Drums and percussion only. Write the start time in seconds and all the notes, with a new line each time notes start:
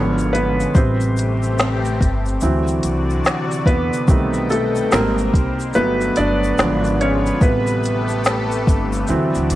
0.18 shaker
0.35 closed hi-hat, shaker
0.60 shaker
0.75 kick, shaker
1.00 shaker
1.17 closed hi-hat, shaker
1.19 shaker
1.43 shaker
1.58 finger snap, snare, shaker
1.85 shaker
2.01 kick, closed hi-hat, shaker
2.26 shaker
2.28 shaker
2.41 shaker
2.67 shaker
2.83 closed hi-hat, shaker
3.10 shaker
3.25 snare, shaker
3.26 finger snap, shaker
3.51 shaker
3.66 kick, closed hi-hat, shaker
3.93 shaker
4.08 kick, shaker
4.34 shaker
4.50 closed hi-hat, shaker
4.52 shaker
4.75 shaker
4.92 finger snap, snare, shaker
5.18 shaker
5.34 kick, closed hi-hat, shaker
5.59 shaker
5.73 shaker
6.01 shaker
6.16 closed hi-hat, shaker
6.44 shaker
6.58 finger snap, snare, shaker
6.84 shaker
7.01 closed hi-hat, shaker
7.26 shaker
7.41 kick, shaker
7.67 shaker
7.83 closed hi-hat, shaker
7.86 shaker
8.08 shaker
8.10 shaker
8.24 finger snap, snare, shaker
8.51 shaker
8.67 kick, closed hi-hat, shaker
8.92 shaker
8.95 shaker
9.07 shaker
9.35 shaker
9.50 closed hi-hat, shaker